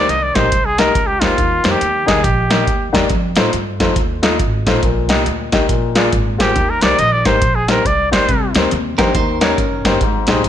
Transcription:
Already playing: D#3 D5
0.09 C2 D#5, closed hi-hat
0.23 D5
0.35 A#1 D#4 G4 A#4 C5 D#5, kick, snare, closed hi-hat
0.52 C2, kick, closed hi-hat
0.65 G#4
0.78 D#4 G4 A#4 D#5, snare, closed hi-hat
0.95 C#2, kick, closed hi-hat
1.07 G4
1.20 D2 D#4 F4 G4 A#4 C5, kick, snare, closed hi-hat
1.37 D#2 D#3, kick, closed hi-hat
1.64 F2 D#4 G4 A#4 C5, snare, closed hi-hat
1.71 G4
1.81 D#2, closed hi-hat
2.06 D2 D#4 G4 G#4 A#4 D#5, kick, snare, closed hi-hat
2.24 A#1 G4, kick, closed hi-hat
2.50 D#4 G4 A#4 D#5, snare, closed hi-hat
2.67 D#2, kick, closed hi-hat
2.93 E2 D#4 G4 A#4 D5, kick, snare, closed hi-hat
3.10 F2, kick, closed hi-hat
3.36 A2 D#4 F4 A4 C5, snare, closed hi-hat
3.53 G2, closed hi-hat
3.80 F2 D#4 F4 A4 C5, kick, snare, closed hi-hat
3.96 D#2, kick, closed hi-hat
4.23 D#4 F4 A4 D#5, snare, closed hi-hat
4.39 G#1, kick, closed hi-hat
4.66 A1 D#4 F4 A4 C5, kick, snare, closed hi-hat
4.83 A#1 A#2, kick, closed hi-hat
5.09 C2 D#4 G4 A#4 D#5, snare, closed hi-hat
5.26 D2, closed hi-hat
5.52 C2 D#4 G4 A#4 D#5, kick, snare, closed hi-hat
5.69 A#1 A#2, kick, closed hi-hat
5.95 F4 G#4 A#4 D5, snare, closed hi-hat
6.12 G#1, kick, closed hi-hat
6.38 F4 G4 G#4 A#4 C5, kick, snare, closed hi-hat
6.56 D#2 D#3, kick, closed hi-hat
6.70 A#4
6.81 C2 D#4 G4 A#4 C5 D5, snare, closed hi-hat
6.99 A#1 D#5, closed hi-hat
7.13 D5
7.25 G#1 D#4 G4 A#4 C5, kick, snare, closed hi-hat
7.41 A#1, kick, closed hi-hat
7.55 G#4
7.68 D#4 G4 A#4 C5, snare, closed hi-hat
7.85 C2 D5, kick, closed hi-hat
8.11 D#4 G4 A#4 C5 D5, kick, snare, closed hi-hat
8.28 C2 C3, kick, closed hi-hat
8.55 D2 D#4 G4 A#4 C5, snare, closed hi-hat
8.71 D#2, closed hi-hat
8.98 F2 D4 D#4 G4 A#4 C5, kick, snare, closed hi-hat
9.15 D#2 D#3 D#4 C5, kick, closed hi-hat
9.41 C#4 D#4 G4 A#4 C#5, snare, closed hi-hat
9.58 F#1, kick, closed hi-hat
9.85 G1 D#4 G4 A#4 C5, kick, snare, closed hi-hat
10.01 G#1 G#2, kick, closed hi-hat
10.27 A#1 D#4 G4 G#4 C5, snare, closed hi-hat
10.44 C2, closed hi-hat

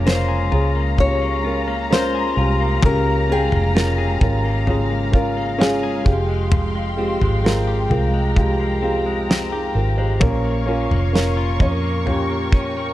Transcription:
Already playing: F1 C#3 F3 G#3 A#3 C#4 F4 A#4 C#5 F5 A#5
0.06 C#4 F4 A#4 C5, snare
0.28 G#4
0.52 C#2 C#4 F4 G#4, floor tom
0.75 A#3
0.98 C#4 F4 G4 C#5, kick, floor tom
1.22 A#3
1.44 C#4 F4 A#4
1.68 A#3
1.91 C#4 F4 A#4 C5, snare
2.15 G#4
2.36 C2 C#4 F4 G4
2.60 A#3
2.83 C#2 C#3 C#4 F4 G4 A#4, kick, floor tom
3.06 A#3
3.30 C#4 F4 G#4 G5
3.52 F1 A#3, floor tom
3.75 C#4 F4 A#4, snare
3.98 G#4
4.21 G#1 C#4 F4 A#4, kick, floor tom
4.44 A#3
4.67 C#3 C#4 F4 G#4, floor tom
4.91 A#3
5.12 C#4 F4 A#4, kick
5.37 A#3
5.59 C#4 F4 G#4, snare
5.83 G#4
6.04 F1 F2 G#3 F4 G4 G5 C6, kick
6.29 G#3
6.52 F2, floor tom
6.75 G#3
6.97 G#3 C4 F4 G4
7.21 G#1 G#3, floor tom
7.43 G#3 C4 F4 A#4, snare
7.67 G4
7.89 C2 G#3 C4 F4 A#4 A#5, floor tom
8.14 G#3
8.35 F2 G#3 F4 G4, kick, floor tom
8.60 G#3
8.82 G#3 C4 F4 G4
9.06 G#3
9.29 C4, snare
9.52 D#4 G4 G#4
9.75 G#1 C4 F4 A#4
9.97 G#3 G4 C5
10.20 A#1 A#2 C#4 F4 A#4 C#5 F5 C#6, kick, floor tom
10.44 A#3
10.66 C#4 F4 A#4
10.90 F1 A#3, floor tom
11.13 C#4 F4 A#4, snare
11.37 F4
11.59 F2 C#4 F4 C#5, kick, floor tom
11.84 A#3
12.06 A#2 C#4 F4 G4 G5, floor tom
12.29 A#3
12.52 C#4, kick
12.77 A#3

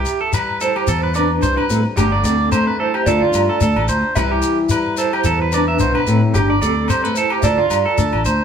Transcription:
Already playing: C3 G4 E5
0.05 shekere
0.21 A4
0.33 E3 G3 B4, low agogo, shekere
0.61 E4 A4 C5, shekere
0.76 G4, low agogo
0.87 E2 A4, muted nylon-string guitar stroke, shekere
1.03 B4
1.14 C4 D4 B4 D5, low agogo, shekere
1.42 C2 E3 G3 C5, shekere
1.57 B4, low agogo
1.70 A2 C4 A4, shekere
1.97 G1 G2 D3 A3 D4 G4, low agogo, shekere
2.12 D5
2.24 D2 C4 A4 D5, shekere
2.52 D3 A3 C5, low agogo, shekere
2.67 B4
2.79 E4 A4 C5
2.94 G4, low agogo
3.06 D2 D3 A3 D4 F4 A4 D5, shekere
3.22 D3 F4
3.33 G2, low agogo, shekere
3.49 A4
3.61 D2 A3 D4 A4, shekere
3.76 A1, low agogo
3.88 D2 C5, shekere
4.15 C2 C3 E3 G3 C4 E4 G4 B4 E5, low agogo, shekere
4.31 G4
4.42 shekere
4.69 E3 G3 B4, low agogo, shekere
4.97 E4 A4 C5, shekere
5.13 G4, low agogo
5.24 E2 G2 A4, shekere
5.42 B4
5.52 C4 D4 B4 D5, low agogo, shekere
5.68 E5
5.79 C2 B2 C5, shekere
5.95 B4, low agogo
6.07 A2 C4 A4, shekere
6.34 G1 G2 D4 G4, low agogo, shekere
6.50 D5
6.62 D2 C4 A4 D5, shekere
6.88 D3 G3 C5, low agogo, shekere
7.04 A3 B4
7.14 E4 A4 C5, shekere
7.30 G4, low agogo
7.43 D2 D3 F4 A4 D5, shekere
7.58 D3 F4
7.70 G2, low agogo, shekere
7.86 A4
7.98 D2 A3 D4 A4, shekere
8.13 A1, low agogo
8.25 D2 C5, shekere

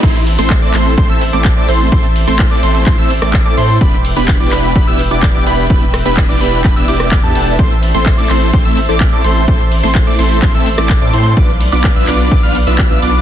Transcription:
0.03 A1 A3 C4 E4 A4 C5 E5 A5 C6 E6, kick, crash
0.27 open hi-hat
0.38 A1 A3 C4 E4 A4 C5 C6
0.50 kick, clap
0.62 A1 A3 C4 E4 A4 D5 D6
0.74 A1 A3 C4 E4 A4 C5 C6, clap, open hi-hat
0.97 A1 A3 A4 C6, kick
1.09 A1 A3 C4 E4 A4 E5 E6
1.21 open hi-hat
1.33 A1 A3 C4 E4 A4 D5 D6
1.45 kick, clap
1.57 A1 A3 C4 E4 A4 D5 D6
1.68 A1 A3 C4 E4 A4 C5 C6, open hi-hat
1.92 A1 A3 C4 E4 A4 C5 C6 D6, kick
2.16 open hi-hat
2.27 A1 A3 C4 E4 A4 C5 C6
2.39 kick, clap
2.51 A1 A3 C4 E4 A4 D5 D6
2.63 A1 A3 C4 E4 A4 C5 C6, open hi-hat
2.86 A1 C6, kick, clap
2.98 A1 A3 C4 E4 A4 E5 E6
3.10 open hi-hat
3.22 A1 A3 C4 E4 A4 D5 D6, cross-stick, open hi-hat
3.33 kick, clap
3.46 A1 A3 C4 E4 A4 D5 D6
3.57 A2 A3 C4 E4 A4 C5 C6, open hi-hat
3.81 E1 D4 B4 E5 G5 B5, kick
4.05 open hi-hat
4.16 E1 B3 D4 E4 G4 B4 B5
4.28 kick, clap
4.40 E1 B3 D4 E4 G4 D5 D6
4.52 E1 B3 D4 E4 G4 B4 B5, clap, open hi-hat
4.75 E1 B3 D4 E4 G4 B4 B5, kick
4.87 E1 B3 D4 E4 G4 E5 E6
4.99 open hi-hat
5.11 E1 B3 D4 E4 G4 D5 D6
5.23 kick, clap
5.35 E1 B3 D4 E4 G4 D5 D6
5.46 E1 B3 D4 E4 G4 B4 B5, open hi-hat
5.70 E1 B3 D4 E4 G4 B4 B5 E6, kick
5.94 cross-stick, open hi-hat
6.05 E1 B3 D4 E4 G4 B4 B5
6.17 kick, clap
6.29 E1 B3 D4 E4 G4 D5 D6
6.41 E1 B3 D4 E4 G4 B4 B5, open hi-hat
6.64 E1 B3 D4 E4 G4 B4 B5, kick, clap
6.76 E1 B3 D4 E4 G4 E5 E6
6.88 E1 B3 D4 E4 G4 D5 D6, open hi-hat
7.00 cross-stick, open hi-hat
7.11 E1 B3 D4 E4 G4 D5 D6, kick, clap
7.24 E2 B3 D4 E4 G4 A4 A5
7.35 E1 B3 D4 E4 G4 A4 A5, open hi-hat
7.59 A1 A3 C4 E4 A4 C5 A5 C6, kick
7.83 open hi-hat
7.94 A1 A3 C4 E4 A4 C5 C6
8.06 kick, clap
8.18 A1 A3 C4 E4 A4 D5 D6
8.30 A1 A3 C4 E4 A4 C5 C6, clap, open hi-hat
8.53 A1 A3 E4 A4 C5 C6, kick
8.65 A1 A3 C4 E4 A4 E5 E6
8.77 open hi-hat
8.89 A1 A3 C4 E4 A4 D5 D6
9.00 kick, clap
9.12 A1 A3 C4 E4 A4 D5 D6
9.24 A1 A3 C4 E4 A4 C5 C6, open hi-hat
9.48 A1 A3 C4 E4 A4 C5 C6 D6, kick
9.72 open hi-hat
9.83 A1 A3 C4 E4 A4 C5 C6
9.95 kick, clap
10.07 A1 A3 C4 E4 A4 D5 D6
10.19 A1 A3 C4 E4 A4 C5 C6, open hi-hat
10.42 A1 A3 C4 E4 A4 C5 C6, kick, clap
10.54 A1 A3 C4 E4 A4 E5 E6
10.66 open hi-hat
10.78 A1 A3 C4 E4 A4 D5 D6, cross-stick, open hi-hat
10.89 kick, clap
11.01 A2 A3 C4 E4 A4 D5 D6
11.13 A2 A3 C4 E4 A4 C5 C6, open hi-hat
11.37 B1 B3 D4 F4 B4 D5 F5 D6, kick
11.61 open hi-hat
11.72 B1 B3 D4 F4 B4 D5 D6
11.84 kick, clap
11.96 B1 B3 D4 F4 B4 E5 E6
12.08 B1 B3 D4 F4 B4 D5 D6, clap, open hi-hat
12.31 B1 B3 D4 F4 B4 D5 D6, kick
12.43 B1 B3 D4 F4 B4 F5 F6
12.55 open hi-hat
12.67 B1 B3 D4 F4 B4 E5 E6
12.78 kick, clap
12.91 B1 B3 D4 F4 B4 E5 E6
13.02 B1 B3 D4 F4 B4 D5 D6, open hi-hat

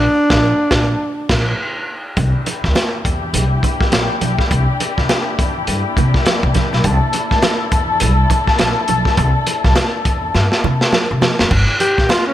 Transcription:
Already playing: D4
0.30 A#1, kick, snare
0.71 A#1, kick, snare
1.29 A#1, kick, snare, crash
2.16 C2 A#3 D4 E4 G4, kick, closed hi-hat, muted conga
2.46 closed hi-hat, muted conga
2.64 D2, kick, snare
2.75 snare, closed hi-hat, high conga
3.05 E2, kick, closed hi-hat
3.33 C2, closed hi-hat, low conga
3.63 kick, closed hi-hat, muted conga
3.81 kick, snare
3.92 A#1, snare, closed hi-hat, high conga
4.21 B1, closed hi-hat, high conga
4.39 kick, snare
4.51 C2, kick, closed hi-hat, muted conga
4.80 closed hi-hat, muted conga
4.98 C2, kick, snare
5.09 snare, closed hi-hat, high conga
5.39 E2, kick, closed hi-hat
5.67 G2, closed hi-hat
5.97 C3, kick, closed hi-hat, muted conga, low conga
6.14 kick, snare
6.26 snare, closed hi-hat, high conga
6.43 C3, kick
6.54 kick, snare, closed hi-hat, high conga
6.73 B1, snare
6.84 C2 A4, kick, closed hi-hat, muted conga
7.13 closed hi-hat, muted conga
7.31 D2, kick, snare
7.42 snare, closed hi-hat, high conga
7.72 E2, kick, closed hi-hat
8.00 C2, closed hi-hat, muted conga, low conga
8.30 kick, closed hi-hat, muted conga
8.47 kick, snare
8.58 A#1, snare, closed hi-hat, high conga
8.88 B1, closed hi-hat, high conga
9.05 kick, snare
9.17 C2, kick, closed hi-hat, muted conga
9.47 closed hi-hat, muted conga
9.64 C2, kick, snare
9.75 snare, closed hi-hat, high conga
10.05 E2, kick, closed hi-hat
10.34 G2, snare, muted conga
10.52 snare
10.64 C3, muted conga, low conga
10.81 snare
10.93 snare, high conga
11.11 C3
11.22 snare, high conga
11.39 F#1, snare, high conga
11.51 G1, kick, crash, muted conga
11.80 G4, closed hi-hat, muted conga
11.98 A#1, kick, snare
12.09 F4, snare, closed hi-hat, high conga
12.27 C#4

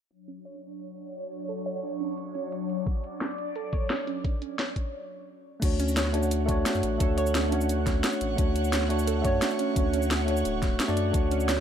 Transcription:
0.11 F#3 D4 C#5, closed hi-hat
0.28 C#4, closed hi-hat
0.45 C#5, closed hi-hat
0.62 closed hi-hat
0.80 closed hi-hat
0.97 closed hi-hat
1.14 closed hi-hat
1.32 closed hi-hat
1.49 A4, closed hi-hat
1.66 C#5, closed hi-hat
1.83 D4, closed hi-hat
2.00 C#4, closed hi-hat
2.18 closed hi-hat
2.35 C#4, closed hi-hat
2.52 C#5, closed hi-hat
2.69 closed hi-hat
2.87 D5, kick, closed hi-hat
3.04 closed hi-hat
3.21 snare, closed hi-hat
3.38 closed hi-hat
3.56 A4, closed hi-hat
3.73 C#5, kick, closed hi-hat
3.90 D4, snare, closed hi-hat
4.07 C#4, closed hi-hat
4.24 kick, closed hi-hat
4.42 C#4, closed hi-hat
4.59 C#5, snare, closed hi-hat
4.76 kick, closed hi-hat
5.60 D2 A3 D4 F#4 C#5 F#5, kick, closed hi-hat, crash, cabasa
5.65 C#5
5.80 C#4, closed hi-hat, cabasa
5.88 cabasa
5.97 C#5, snare, closed hi-hat, cabasa
6.05 snare
6.13 A3 D4 F#4 C#5, closed hi-hat
6.23 cabasa
6.31 closed hi-hat, cabasa
6.46 A3 D4 F#4, kick, closed hi-hat, cabasa
6.51 C#5
6.66 snare, closed hi-hat, cabasa
6.75 F#2, cabasa
6.83 A1, closed hi-hat
6.98 D2 A3 D4 F#4 A4, kick, closed hi-hat, cabasa
7.03 C#5
7.17 C#5, closed hi-hat, cabasa
7.26 cabasa
7.35 D4, snare, closed hi-hat, cabasa
7.49 A3 C#4 D4 F#4, closed hi-hat
7.55 C#5
7.61 cabasa
7.69 closed hi-hat, cabasa
7.87 C#4, kick, snare, closed hi-hat, cabasa
8.04 C#5, snare, closed hi-hat, cabasa
8.13 cabasa
8.21 A1, closed hi-hat
8.36 D2 A3 D4 F#4, kick, closed hi-hat, cabasa
8.41 C#5
8.56 closed hi-hat, cabasa
8.64 cabasa
8.73 snare, closed hi-hat, cabasa
8.82 snare
8.89 A3 D4 F#4 C#5, closed hi-hat
8.99 cabasa
9.07 A4, closed hi-hat, cabasa
9.22 F#2 A3 D4 F#4 C#5, kick, closed hi-hat, cabasa
9.27 C#5
9.42 D4, snare, closed hi-hat, cabasa
9.51 cabasa
9.59 C#4, closed hi-hat
9.74 D2 A3 D4 F#4, kick, closed hi-hat, cabasa
9.79 C#5
9.94 C#4, closed hi-hat, cabasa
10.02 cabasa
10.11 C#5, snare, closed hi-hat, cabasa
10.25 A3 D4 F#4, closed hi-hat
10.31 C#5
10.37 cabasa
10.45 D1, closed hi-hat, cabasa
10.62 kick, snare, closed hi-hat, cabasa
10.80 snare, closed hi-hat, cabasa
10.87 F#2 A3 D4 F#4 D5, cabasa
10.97 closed hi-hat
11.11 D2 A3 D4 F#4, kick, closed hi-hat, cabasa
11.17 C#5
11.31 C#4, closed hi-hat, cabasa
11.40 cabasa
11.49 C#5, snare, closed hi-hat, cabasa

